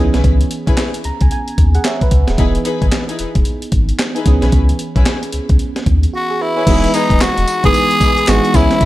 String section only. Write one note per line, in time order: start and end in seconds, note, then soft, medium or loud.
0.13 0.27 C#4 medium
0.13 0.27 E4 medium
0.13 0.27 G#4 medium
0.13 0.27 B4 medium
0.67 0.81 C#4 medium
0.67 0.81 E4 medium
0.67 0.81 G#4 medium
0.67 0.81 B4 medium
2.38 2.57 D#4 medium
2.38 2.57 E4 medium
2.38 2.57 G#4 medium
2.38 2.57 B4 medium
2.65 2.84 D#4 medium
2.65 2.84 E4 medium
2.65 2.84 G#4 medium
2.65 2.84 B4 medium
3.08 3.22 D#4 medium
3.08 3.22 E4 medium
3.08 3.22 G#4 medium
3.08 3.22 B4 medium
4.15 4.29 D#4 medium
4.15 4.29 E4 medium
4.15 4.29 G#4 medium
4.15 4.29 B4 medium
4.42 4.56 C#4 medium
4.42 4.56 E4 medium
4.42 4.56 G#4 medium
4.42 4.56 B4 medium
4.95 5.09 C#4 medium
4.95 5.09 E4 medium
4.95 5.09 G#4 medium
4.95 5.09 B4 medium
6.56 6.70 C#4 medium
6.56 6.66 E4 medium
6.56 6.66 G#4 medium
6.56 6.66 B4 medium
6.67 6.85 D#4 medium
6.67 6.86 E4 medium
6.67 6.86 G#4 medium
6.67 6.86 B4 loud
6.93 7.12 D#4 medium
6.93 7.12 E4 medium
6.93 7.12 G#4 medium
6.93 7.12 B4 medium
7.63 7.77 D#4 medium
7.63 7.77 E4 medium
7.63 7.77 G#4 medium
7.63 7.77 B4 medium
8.00 8.19 D#4 medium
8.00 8.19 E4 medium
8.00 8.19 G#4 medium
8.00 8.19 B4 medium
8.54 8.73 C#4 medium
8.54 8.73 E4 medium
8.54 8.73 G#4 medium
8.54 8.73 B4 medium
8.80 8.85 C#4 medium
8.80 8.85 E4 medium
8.80 8.85 G#4 medium
8.80 8.85 B4 loud